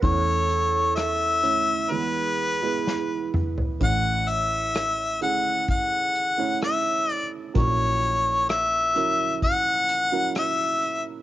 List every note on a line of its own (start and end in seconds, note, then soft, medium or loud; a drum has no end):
0.02 1.86 E2 medium
0.02 1.87 E2 medium
0.02 1.86 E3 medium
0.02 1.00 A3 medium
0.02 1.00 C#4 medium
0.02 1.01 E4 medium
0.02 1.63 A4 medium
0.02 0.93 C#5 loud
0.02 1.01 C#5 medium
0.02 kick medium
0.02 closed hi-hat medium
0.50 closed hi-hat soft
0.95 1.93 E5 loud
0.95 cross-stick medium
0.95 closed hi-hat medium
1.42 1.90 A3 medium
1.42 1.90 C#4 medium
1.42 1.90 E4 medium
1.42 1.91 C#5 medium
1.42 closed hi-hat soft
1.89 3.77 E2 medium
1.89 3.77 E3 medium
1.89 2.48 G#3 medium
1.89 2.48 B3 medium
1.89 2.48 E4 medium
1.89 3.29 G#4 medium
1.89 3.33 B4 medium
1.89 2.48 B4 medium
2.61 3.44 G#3 medium
2.61 3.45 B3 medium
2.61 3.45 E4 medium
2.61 3.45 B4 medium
2.87 snare soft
3.34 mid tom medium
3.57 floor tom medium
3.80 7.51 A1 medium
3.80 7.51 A2 medium
3.80 4.79 A3 medium
3.80 4.79 C#4 medium
3.80 4.79 E4 medium
3.80 4.80 C#5 medium
3.80 4.30 F#5 medium
3.80 kick medium
3.80 closed hi-hat medium
4.28 5.22 E5 medium
4.28 closed hi-hat soft
4.75 cross-stick medium
4.75 closed hi-hat medium
5.21 6.02 A3 medium
5.21 6.03 C#4 medium
5.21 6.03 E4 medium
5.21 6.03 G#4 medium
5.21 5.65 F#5 medium
5.21 closed hi-hat soft
5.68 6.59 F#5 medium
5.68 kick medium
5.68 closed hi-hat medium
6.15 closed hi-hat medium
6.37 7.19 A3 medium
6.37 7.19 C#4 medium
6.37 7.20 E4 medium
6.37 7.20 C#5 medium
6.61 7.12 E5 medium
6.61 cross-stick medium
6.61 closed hi-hat medium
7.09 7.29 D5 medium
7.09 closed hi-hat soft
7.54 11.22 A#1 medium
7.54 11.22 A#2 medium
7.54 8.52 F#3 medium
7.54 8.52 C#4 medium
7.54 8.52 E4 medium
7.54 8.53 A#4 medium
7.54 8.46 C#5 loud
7.54 kick medium
7.54 closed hi-hat medium
8.03 closed hi-hat soft
8.49 9.38 E5 loud
8.49 cross-stick medium
8.49 closed hi-hat medium
8.95 9.76 F#3 medium
8.95 9.76 C#4 medium
8.95 9.77 E4 medium
8.95 9.77 A#4 medium
8.95 closed hi-hat soft
9.43 10.32 F#5 loud
9.43 kick medium
9.43 closed hi-hat medium
9.89 closed hi-hat medium
10.12 10.92 F#3 medium
10.12 10.93 C#4 medium
10.12 10.93 E4 medium
10.12 10.93 A#4 medium
10.35 11.02 E5 loud
10.35 cross-stick medium
10.35 closed hi-hat medium
10.82 closed hi-hat medium